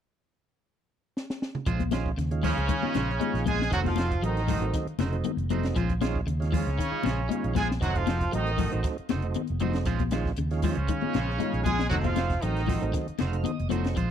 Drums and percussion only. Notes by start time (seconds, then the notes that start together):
1.17 snare
1.30 snare
1.42 snare
1.55 mid tom
1.66 kick, closed hi-hat
1.80 kick, closed hi-hat, high conga
1.91 snare, closed hi-hat, high conga
2.06 kick
2.19 snare, closed hi-hat
2.31 closed hi-hat
2.43 kick, open hi-hat, low conga
2.57 snare, closed hi-hat
2.69 kick, closed hi-hat, low conga
2.83 high conga
2.94 snare, closed hi-hat, high conga
3.09 snare
3.21 closed hi-hat, high conga
3.35 snare, closed hi-hat
3.46 kick, closed hi-hat, high conga, low conga
3.60 snare, high conga
3.72 kick, snare, closed hi-hat
3.84 kick, closed hi-hat, high conga
3.96 snare, closed hi-hat, high conga
4.11 kick, closed hi-hat
4.24 closed hi-hat
4.37 snare, closed hi-hat
4.48 kick, open hi-hat, low conga
4.62 closed hi-hat
4.74 kick, snare, closed hi-hat
4.87 closed hi-hat
4.99 snare, closed hi-hat, high conga
5.13 closed hi-hat
5.24 closed hi-hat, high conga, low conga
5.38 closed hi-hat
5.50 closed hi-hat, high conga, low conga
5.63 snare, closed hi-hat
5.76 kick, closed hi-hat
5.89 kick, closed hi-hat
6.01 snare, closed hi-hat, high conga
6.15 kick
6.28 closed hi-hat
6.42 snare, closed hi-hat
6.52 kick, open hi-hat, low conga
6.68 snare, closed hi-hat
6.79 kick, snare, closed hi-hat
7.03 snare, closed hi-hat, high conga
7.31 closed hi-hat, high conga
7.44 closed hi-hat
7.55 kick, closed hi-hat, high conga, low conga
7.71 snare
7.82 kick, closed hi-hat
7.95 kick, closed hi-hat
8.07 snare, closed hi-hat, high conga
8.21 kick, closed hi-hat
8.33 closed hi-hat
8.47 closed hi-hat
8.58 kick, open hi-hat, low conga
8.72 closed hi-hat
8.84 kick, snare, closed hi-hat
8.98 closed hi-hat
9.09 snare, closed hi-hat, high conga
9.22 closed hi-hat
9.34 closed hi-hat, high conga
9.48 closed hi-hat
9.60 closed hi-hat, high conga, low conga
9.73 snare, closed hi-hat
9.85 kick, snare, closed hi-hat
9.99 kick, closed hi-hat, high conga
10.11 snare, closed hi-hat, high conga
10.25 kick, snare
10.37 closed hi-hat
10.51 snare, closed hi-hat
10.62 kick, open hi-hat, low conga
10.75 closed hi-hat
10.88 kick, closed hi-hat, low conga
11.02 high conga
11.14 snare, closed hi-hat, high conga
11.30 snare
11.40 closed hi-hat, high conga, low conga
11.54 closed hi-hat
11.66 kick, closed hi-hat, high conga, low conga
11.79 snare, high conga
11.91 kick, closed hi-hat
12.04 kick, closed hi-hat, high conga
12.16 snare, closed hi-hat, high conga
12.30 kick, snare, closed hi-hat
12.42 snare, closed hi-hat
12.57 snare, closed hi-hat
12.67 kick, snare, open hi-hat, low conga
12.83 closed hi-hat
12.94 kick, snare, closed hi-hat
13.08 closed hi-hat
13.19 snare, closed hi-hat, high conga
13.33 closed hi-hat
13.44 closed hi-hat, high conga
13.60 closed hi-hat
13.69 closed hi-hat, high conga, low conga
13.84 snare, closed hi-hat
13.97 kick, closed hi-hat